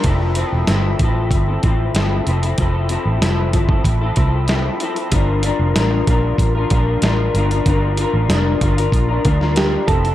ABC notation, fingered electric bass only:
X:1
M:4/4
L:1/16
Q:1/4=95
K:F
V:1 name="Fingered electric bass" clef=bass
F,,,3 E,,, G,,,2 A,,,2 G,,,2 A,,,2 G,,,2 F,,,2 | F,,,3 A,,, F,,,2 G,,,2 A,,,2 C,,4 z2 | G,,,3 F,,, A,,,2 B,,,2 A,,,2 B,,,2 A,,,2 G,,,2 | G,,,3 A,,, F,,,2 G,,,2 B,,,2 D,,4 F,,,2 |]